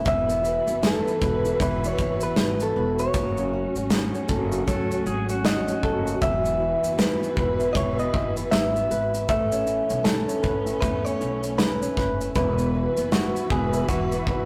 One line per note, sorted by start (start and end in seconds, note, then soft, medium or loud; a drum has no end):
0.00 0.16 A3 medium
0.00 0.16 C#4 medium
0.00 0.43 E4 medium
0.00 1.21 B4 medium
0.05 0.57 E1 loud
0.05 1.59 E3 medium
0.05 3.11 E3 medium
0.05 3.11 E4 medium
0.05 9.25 F#4 medium
0.05 3.11 B4 medium
0.05 0.86 E5 loud
0.05 kick loud
0.05 shaker medium
0.29 0.65 B3 medium
0.29 shaker medium
0.43 0.81 E4 medium
0.43 shaker medium
0.66 0.99 F#1 medium
0.66 1.04 B3 medium
0.66 shaker medium
0.82 1.44 E4 medium
0.82 snare loud
0.82 shaker medium
0.87 1.64 A4 medium
1.05 1.82 B3 medium
1.05 shaker soft
1.21 1.53 E1 loud
1.21 2.76 B4 medium
1.21 kick loud
1.21 shaker medium
1.45 1.97 E4 medium
1.45 shaker medium
1.60 1.92 E1 loud
1.60 3.23 E3 medium
1.60 1.86 B4 loud
1.60 kick medium
1.60 shaker medium
1.84 2.21 B3 medium
1.84 2.23 C#5 medium
1.84 shaker medium
1.98 2.30 F#1 medium
1.98 2.36 E4 medium
1.98 kick medium
1.98 shaker medium
2.21 2.60 B3 medium
2.21 2.62 B4 medium
2.21 shaker medium
2.36 2.69 G#1 medium
2.36 2.98 E4 medium
2.36 snare loud
2.36 shaker medium
2.60 3.24 B3 medium
2.60 3.01 A4 medium
2.60 shaker medium
2.76 3.07 E1 loud
2.76 3.24 B4 medium
2.99 3.24 E4 medium
2.99 3.72 C#5 medium
2.99 shaker medium
3.14 3.65 F#1 loud
3.14 4.67 F#3 medium
3.14 6.19 A3 medium
3.14 6.19 C#4 medium
3.14 kick loud
3.14 shaker medium
3.37 3.76 C#4 medium
3.37 shaker medium
3.53 3.91 F#4 medium
3.75 4.07 G#1 medium
3.75 4.13 C#4 medium
3.75 shaker medium
3.90 4.51 F#4 medium
3.90 snare loud
3.90 shaker medium
4.14 4.89 C#4 medium
4.14 shaker soft
4.29 4.61 F#1 loud
4.29 5.82 A4 medium
4.29 kick medium
4.29 shaker medium
4.52 5.06 F#4 medium
4.52 shaker medium
4.67 4.99 C#2 medium
4.67 6.63 F#3 medium
4.67 5.04 A4 medium
4.67 kick medium
4.67 shaker medium
4.90 5.29 C#4 medium
4.90 shaker soft
5.06 5.69 G#1 medium
5.06 5.44 F#4 medium
5.06 5.29 G#4 medium
5.06 shaker medium
5.29 5.66 C#4 medium
5.29 6.18 F#4 medium
5.29 shaker medium
5.44 6.05 F#4 medium
5.44 6.22 D#5 loud
5.44 snare loud
5.44 shaker medium
5.68 6.31 C#4 medium
5.68 shaker medium
5.83 6.15 F#1 loud
5.83 6.31 A4 medium
5.83 kick medium
6.05 6.59 F#4 medium
6.05 shaker medium
6.20 6.72 E1 loud
6.20 9.25 E3 medium
6.20 7.74 E3 medium
6.20 9.25 E4 medium
6.20 9.25 B4 medium
6.20 7.01 E5 loud
6.20 kick loud
6.20 shaker medium
6.44 6.83 B3 medium
6.44 shaker medium
6.60 6.97 E4 medium
6.83 7.15 F#1 medium
6.83 7.20 B3 medium
6.83 shaker medium
6.98 7.58 E4 medium
6.98 7.74 B4 medium
6.98 snare loud
6.98 shaker medium
7.20 7.97 B3 medium
7.20 shaker soft
7.36 7.68 E1 loud
7.36 8.91 B4 medium
7.36 kick loud
7.59 8.13 E4 medium
7.59 shaker medium
7.73 8.07 E1 loud
7.73 11.24 E3 medium
7.73 7.97 C#5 loud
7.73 7.76 D#5 medium
7.73 kick medium
7.73 shaker medium
7.98 8.37 B3 medium
7.98 8.35 D#5 medium
7.98 shaker soft
8.13 8.45 F#1 medium
8.13 8.52 E4 medium
8.13 kick medium
8.37 8.75 B3 medium
8.37 shaker medium
8.51 8.84 G#1 medium
8.51 9.14 E4 medium
8.51 9.29 E5 loud
8.51 snare loud
8.51 shaker medium
8.76 9.51 B3 medium
8.76 shaker medium
8.91 9.22 G#1 medium
8.91 9.55 B4 medium
8.91 shaker soft
9.14 9.66 E4 medium
9.14 shaker medium
9.27 9.79 A1 loud
9.27 12.32 A3 medium
9.27 10.80 A3 medium
9.27 12.32 B3 medium
9.27 12.32 C#4 medium
9.27 10.08 E5 loud
9.27 kick loud
9.27 shaker medium
9.52 9.88 C#4 medium
9.52 shaker medium
9.66 10.04 E4 medium
9.66 shaker medium
9.90 10.22 B1 medium
9.90 10.27 C#4 medium
9.90 shaker medium
10.04 10.66 E4 medium
10.04 10.84 A4 loud
10.04 snare loud
10.04 shaker medium
10.28 11.03 C#4 medium
10.28 shaker soft
10.43 10.75 A1 loud
10.43 11.97 B4 medium
10.43 kick medium
10.43 shaker soft
10.66 11.20 E4 medium
10.66 shaker medium
10.81 11.14 E2 loud
10.81 12.44 A3 medium
10.81 11.05 B4 medium
10.81 kick loud
10.81 shaker medium
11.04 11.42 C#4 medium
11.04 11.43 C#5 medium
11.04 shaker soft
11.21 11.84 B1 medium
11.21 11.59 E4 medium
11.21 shaker medium
11.43 11.81 C#4 medium
11.43 shaker medium
11.58 12.21 E4 medium
11.58 12.31 B4 loud
11.58 snare loud
11.58 shaker medium
11.82 12.45 C#4 medium
11.82 shaker medium
11.97 12.29 F#1 medium
11.97 13.49 B4 medium
11.97 kick medium
11.97 snare soft
12.21 12.74 E4 medium
12.21 shaker medium
12.35 12.86 E1 loud
12.35 13.88 E3 medium
12.35 14.45 E3 medium
12.35 14.45 E4 medium
12.35 14.45 F#4 medium
12.35 14.45 B4 medium
12.35 13.08 B4 loud
12.35 kick loud
12.35 shaker medium
12.58 12.96 B3 medium
12.58 shaker medium
12.75 13.10 E4 medium
12.97 13.29 F#1 medium
12.97 13.33 B3 medium
12.97 shaker medium
13.12 13.73 E4 medium
13.12 13.48 F#4 medium
13.12 snare loud
13.12 shaker medium
13.34 14.11 B3 medium
13.34 shaker soft
13.50 13.82 E1 loud
13.50 13.88 G#4 medium
13.50 14.45 B4 medium
13.50 kick loud
13.73 14.27 E4 medium
13.73 shaker medium
13.89 14.20 E1 medium
13.89 14.45 E3 medium
13.89 14.45 F#4 medium
13.89 kick medium
13.89 shaker medium
14.12 14.45 B3 medium
14.12 shaker medium
14.27 14.45 F#1 medium
14.27 14.45 E4 medium
14.27 kick medium